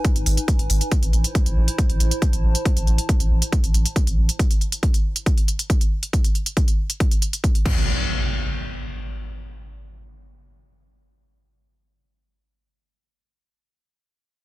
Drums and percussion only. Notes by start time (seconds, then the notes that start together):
0.05 kick, closed hi-hat
0.16 closed hi-hat
0.26 open hi-hat
0.37 closed hi-hat
0.48 kick, closed hi-hat
0.59 closed hi-hat
0.70 open hi-hat
0.81 closed hi-hat
0.92 kick, closed hi-hat
1.03 closed hi-hat
1.13 closed hi-hat
1.24 closed hi-hat
1.35 kick, closed hi-hat
1.46 closed hi-hat
1.68 closed hi-hat
1.78 kick, closed hi-hat
1.90 closed hi-hat
2.00 closed hi-hat
2.11 closed hi-hat
2.22 kick, closed hi-hat
2.33 closed hi-hat
2.55 closed hi-hat
2.65 kick, closed hi-hat
2.77 closed hi-hat
2.87 closed hi-hat
2.98 closed hi-hat
3.09 kick, closed hi-hat
3.20 closed hi-hat
3.42 closed hi-hat
3.52 kick, closed hi-hat
3.64 closed hi-hat
3.74 closed hi-hat
3.86 closed hi-hat
3.96 kick, closed hi-hat
4.07 closed hi-hat
4.29 closed hi-hat
4.39 kick, closed hi-hat
4.51 closed hi-hat
4.61 closed hi-hat
4.72 closed hi-hat
4.83 kick, closed hi-hat
4.94 closed hi-hat
5.16 closed hi-hat
5.26 kick, closed hi-hat
5.38 closed hi-hat
5.48 closed hi-hat
5.59 closed hi-hat
5.70 kick, closed hi-hat
5.81 closed hi-hat
6.03 closed hi-hat
6.13 kick, closed hi-hat
6.24 closed hi-hat
6.35 closed hi-hat
6.46 closed hi-hat
6.57 kick, closed hi-hat
6.68 closed hi-hat
6.90 closed hi-hat
7.00 kick, closed hi-hat
7.11 closed hi-hat
7.22 closed hi-hat
7.33 closed hi-hat
7.44 kick, closed hi-hat
7.55 closed hi-hat
7.66 kick, crash